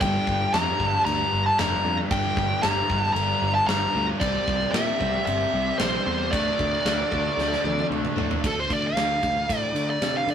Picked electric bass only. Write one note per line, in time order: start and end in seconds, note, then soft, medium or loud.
0.01 0.17 G1 loud
0.28 0.44 G1 loud
0.54 0.70 F2 loud
0.80 0.96 G1 medium
1.06 1.23 D2 medium
1.33 1.49 G1 medium
1.59 1.75 F1 loud
1.84 2.01 F2 medium
2.11 2.27 G1 loud
2.37 2.54 G1 loud
2.64 2.81 G1 medium
2.90 3.07 G1 medium
3.16 3.32 G1 medium
3.42 3.59 G1 loud
3.68 3.85 G1 medium
3.95 4.12 D2 medium
4.21 4.38 C2 loud
4.47 4.64 C2 medium
4.74 4.91 A#2 medium
5.01 5.17 C2 medium
5.27 5.44 G1 medium
5.54 5.70 C2 loud
5.80 5.97 A#1 loud
6.07 6.32 E2 loud
6.32 6.49 D2 loud
6.59 6.76 D2 loud
6.85 7.02 D2 medium
7.12 7.29 D2 medium
7.37 7.54 D2 loud
7.64 7.81 D2 medium
7.90 8.07 D2 medium
8.17 8.34 A2 loud
8.44 8.65 D2 loud
8.70 8.92 D2 medium
8.97 9.18 D2 medium
9.23 9.44 D2 medium
9.49 9.71 A2 loud
9.74 9.96 D3 medium
10.02 10.23 C3 medium
10.27 10.35 D3 medium